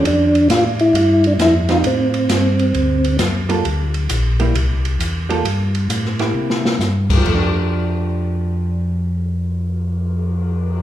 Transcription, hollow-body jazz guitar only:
X:1
M:4/4
L:1/8
Q:"Swing" 1/4=133
K:F
V:1 name="Hollow-body jazz guitar"
z6 z [G,C_E] | z6 z [G,B,FA] | z3 [G,B,E] z3 [G,B,FA] | z3 [B,EG]3 z2 |
[F,A,DG]8- | [F,A,DG]8 |]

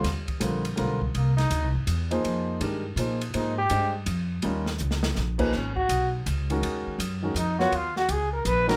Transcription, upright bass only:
X:1
M:3/4
L:1/8
Q:"Swing" 1/4=164
K:Fdor
V:1 name="Upright bass" clef=bass
E,,2 B,,,2 =B,,,2 | C,,2 (3D,, C,, A,,, =E,,2 | F,,2 G,,2 B,,2 | A,,2 G,,2 F,,2 |
E,,2 _D,,2 B,,,2 | [K:G#dor] G,,,2 B,,,2 C,,2 | D,, z F,,2 E,,2 | D,,2 C,,2 A,,,2 |]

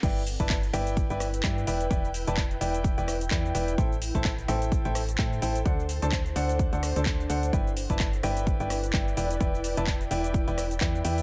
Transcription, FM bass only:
X:1
M:4/4
L:1/16
Q:"Swing 16ths" 1/4=128
K:G
V:1 name="FM bass" clef=bass
G,,,3 G,,,3 G,,,3 G,,,3 G,,2 E,,,2 | E,,,3 E,,,3 E,,,3 E,,,3 E,,2 E,,,2 | A,,,3 A,,,3 A,,,3 A,,,3 A,,2 A,,,2 | D,,3 D,,3 D,,3 D,,2 D,,3 D,,2 |
G,,,3 G,,,3 G,,,3 G,,,3 G,,,2 E,,,2 | E,,,3 E,,,3 E,,,3 E,,,3 E,,2 E,,2 |]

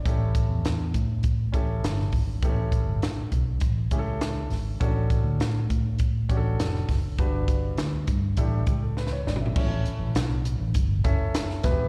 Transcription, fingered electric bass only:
X:1
M:4/4
L:1/16
Q:1/4=101
K:Amix
V:1 name="Fingered electric bass" clef=bass
A,,,3 E,, E,,2 A,,4 A,,,2 G,,,2 ^G,,,2 | A,,,3 G,,, z2 B,,,2 A,,,2 C,,4 ^G,,,2 | A,,,3 D,, A,,2 A,,4 A,,,2 =F,,,2 ^F,,,2 | G,,,4 D,,2 G,,2 A,,,2 C,,4 ^G,,,2 |
A,,,2 z A,,, B,,,3 A,,, G,,,2 z4 E,,, ^D,,, |]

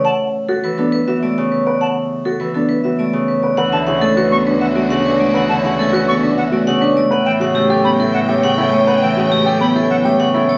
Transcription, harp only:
X:1
M:3/4
L:1/16
Q:1/4=102
K:D
V:1 name="Harp" clef=bass
A,4 E, B,2 E, A, C,3- | C,4 E, B,2 E, A, C,3 | E, D, C, A, E, B,2 E, A, C,2 A, | E, D, C, A, E, B,2 E, A, C,2 A,- |
A, E, C, A, F, B,2 F, A, C,2 A,- | A, E, C, A, F, B,2 F, A, C,2 A, |]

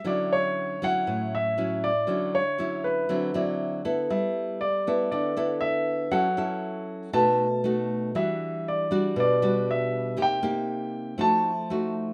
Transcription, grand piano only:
X:1
M:4/4
L:1/8
Q:1/4=119
K:D
V:1 name="Grand piano"
d c2 f2 e2 d- | d c2 B2 d2 z | [K:G] e2 d2 d2 e2 | f4 a3 z |
e2 d2 d2 e2 | g4 a3 z |]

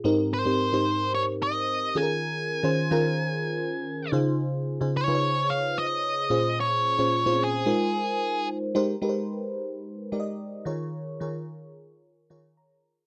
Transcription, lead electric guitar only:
X:1
M:4/4
L:1/8
Q:1/4=110
K:Ab
V:1 name="Lead electric guitar"
z c3 d e2 a- | a6- a z | z2 d2 f e3 | d3 A4 z |
z8 | z8 |]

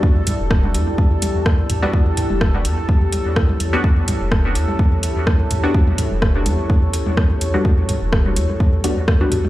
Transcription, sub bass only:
X:1
M:4/4
L:1/16
Q:"Swing 16ths" 1/4=126
K:Edor
V:1 name="Sub bass" clef=bass
E,,2 z E,,,3 E,, z E,,2 z E,,2 z E,, z | E,,2 z E,,,3 E,, z E,,2 z E,,2 z E,, z | E,,2 z E,,,3 E,, z E,,2 z E,,2 z E,, z | E,,2 z E,,,3 E,, z E,,2 z E,,2 z E,, z |
E,,2 z E,,,3 E,, z E,,2 z E,,2 z E,, z |]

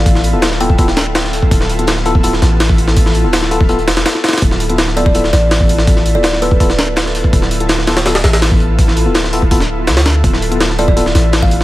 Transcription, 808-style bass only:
X:1
M:4/4
L:1/16
Q:1/4=165
K:Ddor
V:1 name="808-style bass" clef=bass
A,,,3 D,,,12 z | D,,,8- D,,,2 A,,,6- | A,,,3 D,,,6- D,,, E,,,2 z4 | D,,,8- D,,,2 A,,,6- |
A,,,3 D,,,12 z | D,,,8- D,,,2 A,,,6- | A,,,3 D,,,8- D,,, D,,4 | D,,,8- D,,,2 A,,,6 |]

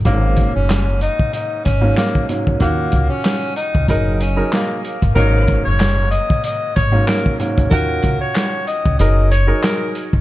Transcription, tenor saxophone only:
X:1
M:4/4
L:1/16
Q:"Swing 16ths" 1/4=94
K:Abdor
V:1 name="Tenor saxophone"
B,3 D3 E2 E2 D2 B,2 z2 | B,3 D3 E2 E2 D2 B,2 z2 | B3 d3 e2 e2 d2 B2 z2 | B3 d3 e2 e2 d2 B2 z2 |]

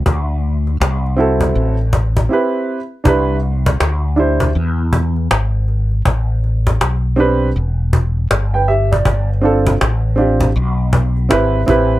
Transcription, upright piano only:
X:1
M:4/4
L:1/16
Q:"Swing 16ths" 1/4=80
K:Dmix
V:1 name="Upright piano"
z6 [CEFA]2 z4 [CEGB]2 z2 | [K:C] [DEGB]2 z4 [DEGc]2 z8 | z6 [CDGB]2 z4 z [Bg] [Ge] d- | d z [CDFA]2 z2 [CDFG]2 z4 [CEGB]2 [CEGB]2 |]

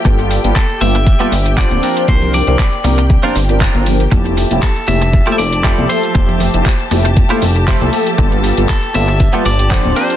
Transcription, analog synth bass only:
X:1
M:4/4
L:1/16
Q:"Swing 16ths" 1/4=118
K:F
V:1 name="Analog synth bass" clef=bass
G,,,3 G,,, z2 G,,,3 z G,,,3 D,,, z2 | C,,3 C,, z2 C,,3 z G,,,3 G,,,3 | F,,,3 F,,, z2 F,,,3 z F,,,3 C,, z2 | F,,,3 F,,, z2 F,,,3 z F,,,3 C,, z2 |
G,,,3 G,,, z2 G,,,3 z G,,,3 D,,, z2 |]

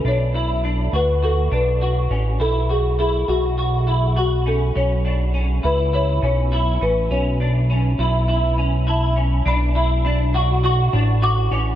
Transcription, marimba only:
X:1
M:4/4
L:1/8
Q:1/4=102
K:Bdor
V:1 name="Marimba"
c3 B A B3 | A G G F3 F A | c3 B c c2 B | c6 a2 |
b4 c'2 d'2 |]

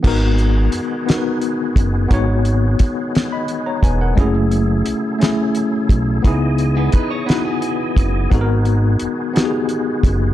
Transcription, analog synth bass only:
X:1
M:6/8
L:1/8
Q:3/8=58
K:G#phr
V:1 name="Analog synth bass" clef=bass
G,,,2 F,,, z2 F,,, | G,,,2 E,,, z2 E,,, | F,,,2 B,,, z2 B,,, | C,,2 F,,, z2 F,,, |
G,,,2 F,,, z2 F,,, |]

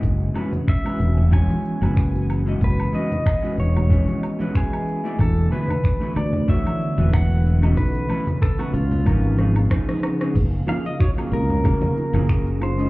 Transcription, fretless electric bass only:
X:1
M:4/4
L:1/16
Q:"Swing 16ths" 1/4=93
K:Elyd
V:1 name="Fretless electric bass" clef=bass
F,,,2 z4 E,,,3 z2 F,,,4- F,,, | F,,,2 z4 E,,,3 z6 z | E,,,2 z4 =D,,3 z2 E,,,4- E,,, | B,,,2 z4 C,,2 G,,,4 z4 |
[K:Gb] G,,,2 z4 D,,3 z2 G,,,4- G,,, |]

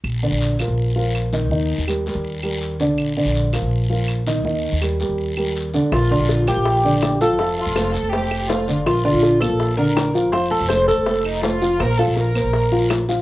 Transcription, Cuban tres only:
X:1
M:4/4
L:1/8
Q:1/4=163
K:Bb
V:1 name="Cuban tres"
z8 | z8 | z8 | z8 |
F F2 G4 A- | A3 z4 z | F F2 A2 B3 | c A c A2 z3 |
z8 |]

